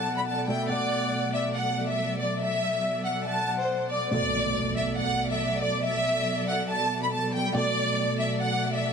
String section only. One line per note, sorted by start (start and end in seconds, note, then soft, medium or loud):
0.00 4.09 B2 medium
0.00 0.66 F#3 medium
0.00 4.09 A4 medium
0.00 4.09 D5 medium
0.70 4.09 F#3 medium
4.13 8.93 B2 medium
4.13 8.93 F#3 medium
4.13 8.93 A4 medium
4.13 7.52 D5 medium
7.56 8.93 D5 medium